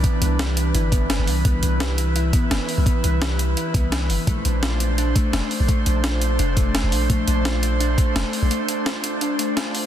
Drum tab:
HH |xxxxxxxo|xxxxxxxo|xxxxxxxo|xxxxxxxo|
SD |--o---o-|--o---o-|--o---o-|--o---o-|
BD |o----o--|o----o--|o----o--|o----o--|

HH |xxxxxxxo|xxxxxxxo|xxxxxxxo|
SD |--o---o-|--o---o-|--o---o-|
BD |o----o--|o----o--|--------|